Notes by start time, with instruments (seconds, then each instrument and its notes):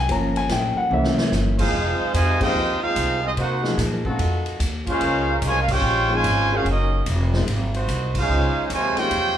Already playing: upright piano G#5
0.08 upright bass G1, upright piano F3 A#3 C#4 A#5, kick, ride
0.36 upright piano G#5, ride
0.49 upright bass A#1, upright piano G5, kick, snare, hi-hat pedal, ride
0.76 upright piano F#5, muted upright bass stroke
0.90 upright bass C2, upright piano E3 A#3 C#4 E5
1.04 snare
1.18 snare
1.32 upright bass G1, snare, hi-hat pedal
1.58 trombone section G#3 C4 F4, trumpet section D#4 G#4 C5 F5, kick, crash
1.73 upright bass F1, trombone section G#3 D#4 F4 C5, kick
1.99 muted upright bass stroke
2.14 upright bass F2, trombone section C3 D#3 G#3, trumpet section F4 C5 D#5 G#5, kick, hi-hat pedal, ride
2.39 upright piano F3 A#3 D#4 G#4, trombone section C4 D#4 G4, trumpet section F4 C5 D#5 G5, kick, crash
2.54 upright bass D#2
2.81 trombone section G#3 C4 F4, trumpet section D#4 G#4 C5 F5
2.96 upright bass C2, kick, hi-hat pedal, ride
3.22 trombone section G#3 C4 D#4, trumpet section C4 F4 G#4 D#5
3.37 upright bass C3, trombone section A#3 D#4 F#4 C5, trumpet section D#4 A#4 C5 F#5, kick, ride
3.63 upright piano F3 A#3 D#4 G#4, snare
3.78 upright bass A#2, kick, snare, hi-hat pedal, ride
4.05 upright piano A3 C4 D#4 F#4, trombone section D#4 F4 F#4 A4, kick
4.19 upright bass F2, kick, ride
4.46 ride
4.60 upright bass D#2, kick, hi-hat pedal, ride
4.87 trombone section G#3 C#4 F4, trumpet section C#4 G#4 C5 F5, kick, ride
5.01 upright bass C#2, trombone section G#3 A#3 C#4 A#4, kick, ride
5.42 upright bass C2, trombone section C#3 F3 G#3, kick, hi-hat pedal, ride
5.47 trumpet section F4 C5 C#5 G#5
5.62 trumpet section F5
5.68 trombone section G#3 C#4 G4, trumpet section F4 C5 C#5 G5, kick, crash
5.82 upright bass A#1
6.09 trombone section C#3 F3 G#3, upright piano F3 A#3 D#4 G#4
6.14 trumpet section F4 C5 C#5 G#5
6.24 upright bass G#1, kick, hi-hat pedal, ride
6.52 upright piano G#3 C#4 F#4 A#4, trombone section G#3 C#4 F4, trumpet section C#4 G#4 C5 F5
6.65 upright bass F#1, trombone section F#3 A#3 D#4, kick, ride
6.70 trumpet section C#4 F#4 A#4 D#5
7.06 upright bass F1, kick, hi-hat pedal, ride
7.33 upright piano A#3 D#4 G#4 C5, snare
7.47 upright bass G#1, kick, ride
7.74 trombone section G#3 D#4 F#4 C5, ride
7.88 upright bass C2, kick, hi-hat pedal, ride
8.15 trombone section G#3 D#4 F4, trumpet section C5 F5, kick, crash
8.19 trumpet section C#4 G#4
8.29 upright bass C#2, trombone section G#3 C#4 F4 C5
8.55 muted upright bass stroke
8.70 upright bass D#2, trombone section C3 F3 G#3, trumpet section F4 C5 C#5 G#5, kick, hi-hat pedal, ride
8.96 trombone section C3 G#3 G4, upright piano A#3 D#4 G#4 C5, trumpet section F4 C5 C#5 G5, muted upright bass stroke, snare, ride
9.11 upright bass F2, kick, ride